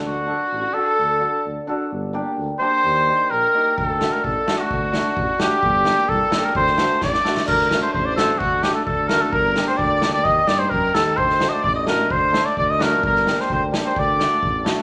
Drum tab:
CC |--------|--------|--------|--------|
SD |--------|--------|--------|--------|
BD |--------|--------|--------|--------|

CC |--------|--------|--------|--------|
SD |--o---o-|--o---o-|--o---o-|-oo-oooo|
BD |o---o---|o---o---|o---o---|o---o---|

CC |x-------|--------|--------|--------|
SD |-oo---o-|--o---o-|--oo--o-|--o---o-|
BD |o---o---|o---o---|o---o---|o---o---|

CC |--------|--------|--------|--------|
SD |-oo---o-|--o---o-|-ooo--o-|--o---o-|
BD |o---o---|o---o---|o---o---|o---o---|